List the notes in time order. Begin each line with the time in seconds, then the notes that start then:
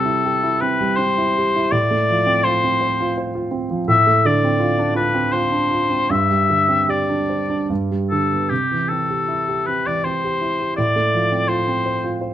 Already playing: C3 G3 C4 A4
0.05 E4
0.25 G4
0.43 E4
0.60 C4 B4
0.80 G3
0.97 C4 C5
1.18 E4
1.38 G4
1.56 E4
1.72 A2 D5
1.91 A3
2.10 F3
2.26 C4
2.44 F4 C5
2.64 C4
2.81 C5
3.00 F4
3.18 C5
3.35 F4
3.51 C4
3.70 F3
3.88 A2 E5
4.07 A3
4.25 D3 D5
4.44 C4
4.60 F4
4.79 D4
4.95 F4 B4
5.14 C4
5.33 F4 C5
5.52 D4
5.71 F4
5.90 C4
6.10 G2 E5
6.31 G3
6.50 D3
6.69 C4
6.89 G4 D5
7.09 D4
7.29 C5
7.50 D4
7.70 G2
7.91 G3
8.10 D3 A4
8.33 B3
8.49 C3 G4
8.72 E3
8.88 C4 A4
9.10 G4
9.28 E4
9.48 G4
9.66 C4 B4
9.86 E3 D5
10.04 C4 C5
10.24 G4
10.41 E4
10.61 G4
10.76 A2 D5
10.96 A3
11.14 F3
11.32 C4
11.48 F4 C5
11.68 C4
11.86 C5
12.04 F4
12.21 C5